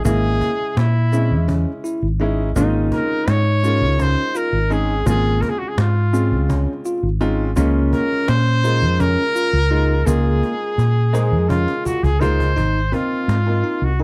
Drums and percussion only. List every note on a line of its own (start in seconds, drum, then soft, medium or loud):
0.05 cajon bass loud
0.05 shaker medium
0.41 cajon bass medium
0.77 cajon slap loud
1.13 shaker soft
1.49 cajon bass medium
1.84 cajon slap soft
1.84 shaker soft
2.20 cajon slap soft
2.56 cajon bass loud
2.56 shaker medium
2.92 cajon bass medium
3.28 cajon slap loud
3.64 shaker soft
4.00 cajon bass loud
4.00 cajon slap soft
4.00 shaker soft
4.35 cajon slap soft
4.35 shaker soft
4.71 shaker soft
5.07 cajon bass loud
5.07 shaker medium
5.42 cajon bass medium
5.78 cajon slap loud
6.14 shaker soft
6.50 cajon bass loud
6.50 shaker soft
6.85 cajon slap soft
6.85 shaker soft
7.21 shaker soft
7.57 cajon bass loud
7.57 shaker soft
7.93 cajon bass medium
8.28 cajon slap loud
8.64 shaker soft
9.00 cajon bass loud
9.00 cajon slap soft
9.00 shaker soft
9.36 cajon slap soft
9.36 shaker soft
10.07 cajon bass loud
10.07 shaker medium
10.43 cajon slap medium
10.79 cajon slap medium
10.79 shaker soft
11.15 cajon slap medium
11.15 shaker soft
11.50 cajon bass medium
11.68 cajon slap medium
11.86 cajon bass medium
11.86 shaker soft
12.04 cajon bass medium
12.22 cajon bass medium
12.22 shaker soft
12.40 cajon bass medium
12.57 cajon bass medium
12.93 cajon bass medium
13.29 cajon slap medium
13.66 cajon slap soft